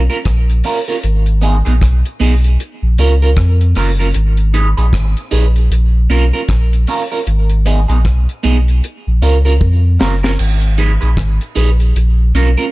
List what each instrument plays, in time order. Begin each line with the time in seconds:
0.10 clean electric guitar C#4 F4 A#4
0.25 sub bass A#1, kick, cross-stick, closed hi-hat
0.50 closed hi-hat
0.64 clean electric guitar C#4 F4 A#4, open hi-hat
0.88 clean electric guitar C#4 F4 A#4
1.03 sub bass G#1, closed hi-hat
1.26 closed hi-hat
1.41 clean electric guitar B3 D#4 G#4, closed hi-hat
1.65 sub bass A#1, clean electric guitar B3 D#4 G#4, closed hi-hat
1.81 sub bass B1, kick, cross-stick, closed hi-hat
2.05 closed hi-hat
2.20 sub bass B1, clean electric guitar B3 D#4 G#4, open hi-hat
2.44 closed hi-hat
2.60 closed hi-hat
2.83 sub bass A#1
2.98 sub bass C#2, clean electric guitar C#4 F4 A#4, closed hi-hat
3.22 clean electric guitar C#4 F4 A#4
3.37 sub bass F2, kick, cross-stick, closed hi-hat
3.61 closed hi-hat
3.75 sub bass F#1, clean electric guitar C#4 F4 A#4, cross-stick, open hi-hat
3.99 clean electric guitar C#4 F4 A#4
4.14 sub bass G#1, closed hi-hat
4.37 closed hi-hat
4.54 clean electric guitar D#4 G#4 B4, closed hi-hat
4.77 sub bass A#1, clean electric guitar D#4 G#4 B4, closed hi-hat
4.93 sub bass G#1, kick, cross-stick, closed hi-hat
5.17 closed hi-hat
5.31 sub bass A#1, clean electric guitar D#4 G#4 B4, closed hi-hat
5.56 closed hi-hat
5.71 sub bass A#1, closed hi-hat
6.10 sub bass B1, clean electric guitar C#4 F4 A#4, closed hi-hat
6.33 clean electric guitar C#4 F4 A#4
6.48 sub bass A#1, kick, cross-stick, closed hi-hat
6.73 closed hi-hat
6.87 clean electric guitar C#4 F4 A#4, open hi-hat
7.12 clean electric guitar C#4 F4 A#4
7.27 sub bass G#1, closed hi-hat
7.50 closed hi-hat
7.66 clean electric guitar B3 D#4 G#4, closed hi-hat
7.88 sub bass A#1, clean electric guitar B3 D#4 G#4, closed hi-hat
8.05 sub bass B1, kick, cross-stick, closed hi-hat
8.29 closed hi-hat
8.43 sub bass B1, clean electric guitar B3 D#4 G#4, closed hi-hat
8.68 closed hi-hat
8.84 closed hi-hat
9.07 sub bass A#1
9.22 sub bass C#2, clean electric guitar C#4 F4 A#4, closed hi-hat
9.45 clean electric guitar C#4 F4 A#4
9.61 sub bass F2, kick
9.99 sub bass F#1, clean electric guitar C#4 F4 A#4, snare
10.23 clean electric guitar C#4 F4 A#4, snare
10.39 sub bass G#1, crash
10.62 closed hi-hat
10.78 clean electric guitar D#4 G#4 B4, closed hi-hat
11.01 sub bass A#1, clean electric guitar D#4 G#4 B4, closed hi-hat
11.17 sub bass G#1, kick, cross-stick, closed hi-hat
11.41 closed hi-hat
11.55 sub bass A#1, clean electric guitar D#4 G#4 B4, closed hi-hat
11.80 closed hi-hat
11.96 sub bass A#1, closed hi-hat
12.34 sub bass B1, clean electric guitar C#4 F4 A#4, closed hi-hat
12.58 clean electric guitar C#4 F4 A#4